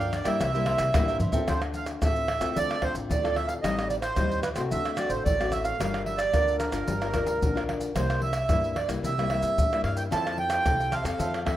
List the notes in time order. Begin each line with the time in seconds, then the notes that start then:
Already playing: G2 D3 F3 A#3 D4 F5
0.00 A#4 D5 G5, pandeiro, maracas
0.13 D5, pandeiro, tamborim, maracas
0.25 G2 G3 A#3 E4 A#4 D5 E5 G5, pandeiro, tamborim, maracas
0.40 C2 C3 E4 A#4 C5 E5, pandeiro, tamborim, maracas, surdo
0.53 G3 A#3 E4 A#4 C5 E5, pandeiro, maracas
0.65 E4 A#4 C5 E5, pandeiro, tamborim
0.78 C2, muted cavaquinho stroke, pandeiro, tamborim, maracas
0.94 A1 G2 G3 A#3 E4, pandeiro, tamborim, maracas, surdo
1.08 A#4 C5 E5, pandeiro, maracas
1.20 E4 A#4 C5 E5, surdo, pandeiro, maracas
1.32 C4 F4 A4 A#4 C5 E5, pandeiro, maracas, surdo
1.48 D2 D3 C5, pandeiro, tamborim, maracas, surdo
1.62 pandeiro, tamborim, maracas
1.74 F5, pandeiro, maracas
1.86 pandeiro, tamborim, maracas
2.01 A1 A2 C4 F4 A4 E5, pandeiro, tamborim, maracas, surdo
2.16 pandeiro, maracas
2.28 pandeiro, tamborim
2.40 D2 C4 F4 A4, pandeiro, tamborim, maracas
2.56 D2 D3 D5, pandeiro, maracas, surdo
2.71 pandeiro, tamborim, maracas
2.82 C4 F4 A4 C5, pandeiro, tamborim, surdo
2.95 A1, pandeiro, maracas
3.09 D2 A2 D5, pandeiro, maracas, surdo
3.23 C4 F4 A4, pandeiro, tamborim, maracas
3.36 E5, pandeiro, tamborim
3.47 F5, pandeiro, maracas
3.62 A1 A2 G3 C4 D#4 D#5, pandeiro, tamborim, maracas, surdo
3.79 pandeiro, tamborim, maracas
3.89 D5, pandeiro, maracas
4.02 C5, pandeiro, tamborim, maracas
4.16 D#2 A2 G3 C4 D#4, pandeiro, tamborim, maracas, surdo
4.32 pandeiro, maracas
4.42 B4, pandeiro, tamborim, maracas
4.56 C2 A3 C4 F#4 C5, pandeiro, tamborim, maracas
4.71 D2 D3 E5, pandeiro, maracas, surdo
4.85 pandeiro, tamborim, maracas
4.97 A3 C4 F#4 D5, pandeiro, tamborim, maracas
5.10 A1 C5, pandeiro, maracas
5.25 A1 A2 D5, pandeiro, maracas, surdo
5.40 A3 C4 F#4, pandeiro, tamborim, maracas
5.52 E5, pandeiro, tamborim, maracas
5.64 F5, pandeiro, maracas
5.80 G1 G3 D4 F4 A#4, pandeiro, tamborim, maracas, surdo
5.94 pandeiro, tamborim, maracas
6.05 E5, pandeiro
6.18 D5, pandeiro, tamborim, maracas
6.33 D2 D3 D4 F4 A#4, pandeiro, tamborim, maracas, surdo
6.48 pandeiro, maracas
6.59 A#4, pandeiro, tamborim, maracas
6.72 G1 D4 F4 A#4, pandeiro, tamborim, maracas
6.87 G1 G3, pandeiro, maracas, surdo
7.01 D4 F4 A#4, pandeiro, tamborim, maracas
7.13 D4 F4 A#4, pandeiro, tamborim, maracas, surdo
7.26 D2, pandeiro, maracas
7.42 A#1 D3, pandeiro, maracas, surdo
7.55 D4 F4 A#4, pandeiro, tamborim, maracas
7.69 pandeiro, tamborim
7.81 pandeiro, maracas
7.95 C2 C3 G3 A#3 E4 C5, pandeiro, tamborim, maracas, surdo
8.10 pandeiro, tamborim, maracas
8.22 E5, pandeiro
8.33 pandeiro, tamborim, maracas
8.49 G2 G3 A#3 E4, pandeiro, tamborim, maracas, surdo
8.64 pandeiro, maracas
8.76 D5, pandeiro, tamborim
8.88 C2 G3 A#3 E4, pandeiro, tamborim, maracas
9.03 C2 C3 E5, pandeiro, maracas, surdo
9.18 G3 A#3 E4, pandeiro, tamborim, maracas
9.30 G3 A#3 E4, pandeiro, tamborim
9.43 G2, pandeiro, maracas
9.58 G2 A2, pandeiro, maracas, surdo
9.73 G3 A#3 E4, pandeiro, tamborim, maracas
9.84 G2 F5, pandeiro, tamborim
9.97 G5, pandeiro, maracas
10.11 F2 F3 C4 E4 A4 C5 F5 A5, pandeiro, tamborim, maracas, surdo
10.25 A4 C5 F5, pandeiro, tamborim, maracas
10.37 G5, muted cavaquinho stroke, pandeiro
10.50 A4 C5 F5, pandeiro, tamborim, maracas
10.66 C2 C3 C4 E4 A4, pandeiro, tamborim, maracas, surdo
10.80 A4 C5 F5, pandeiro, maracas
10.91 E4 A4 C5 F5, pandeiro, tamborim, maracas
11.03 F2 C4 A4 C5 F5, pandeiro, tamborim, maracas
11.18 F2 F3 E4 A4 C5 F5, pandeiro, maracas, surdo
11.33 A4 C5 F5, pandeiro, tamborim, maracas
11.45 C4 E4 A4 E5, muted cavaquinho stroke, pandeiro, tamborim, surdo